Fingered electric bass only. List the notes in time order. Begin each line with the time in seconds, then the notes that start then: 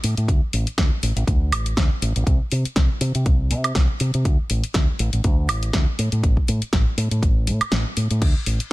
0.04 A2
0.18 A2
0.28 D2
0.53 A1
0.67 muted fingered electric bass stroke
0.78 D2
1.03 A1
1.16 A1
1.27 D2
1.52 A1
1.77 D2
2.02 A1
2.16 A1
2.26 C2
2.52 C3
2.65 muted fingered electric bass stroke
2.76 C2
3.01 C3
3.15 C3
3.26 C2
3.51 C3
3.76 C2
4.00 C3
4.14 C3
4.25 D2
4.50 A1
4.75 D2
4.99 A1
5.13 A1
5.24 D2
5.49 A1
5.74 D2
5.99 A2
6.12 A2
6.23 A1
6.48 A2
6.62 muted fingered electric bass stroke
6.73 A1
6.97 A2
7.11 A2
7.22 A1
7.47 A2
7.61 muted fingered electric bass stroke
7.72 A1
7.97 A2
8.11 A2
8.22 D2
8.46 A1